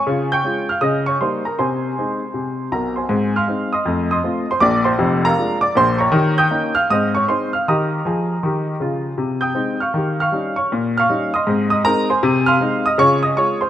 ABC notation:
X:1
M:4/4
L:1/8
Q:"Swing" 1/4=158
K:Ab
V:1 name="Upright piano"
[dad'] [gd'g']2 [ff'] [ee'] [dd'] [cc'] [Bb] | [cac']6 [Bb] [cac']- | [cac'] [fc'f']2 [ec'e']2 [ec'e']2 [cc'] | [=d=d'] [cc']2 [Bfb]2 [dd'] [cc'] [_db_d']- |
[dbd'] [ge'g']2 [ff'] [ee'] [dd'] [cc'] [ff'] | [ebe']6- [ebe'] z | z [ge'g']2 [fd'f']2 [fd'f']2 [dd'] | z [fd'f']2 [ec'e']2 [ee'] [Bb] [cac']- |
[cac'] [fc'f']2 [ee'] [dd'] [ee'] [dd'] [cc'] |]
V:2 name="Upright piano"
[D,F]2 [A,DF]2 D,2 [G,B,E]2 | C,2 [A,CE]2 C,2 [_C,,_C,]2 | [A,,C]2 [A,CE]2 [F,,=A,]2 [A,CF]2 | [B,,,B,,]2 [F,,,F,,]2 [A,=DF]2 [B,,,B,,]2 |
[E,G]2 [B,DE]2 [A,,C]2 [A,CE]2 | [E,G]2 [F,A]2 [E,G]2 [D,F]2 | C,2 [A,CE]2 [E,G]2 [G,DE]2 | B,,2 [G,DE]2 [A,,C]2 [A,CE]2 |
C,2 [A,CE]2 [D,F]2 [A,F]2 |]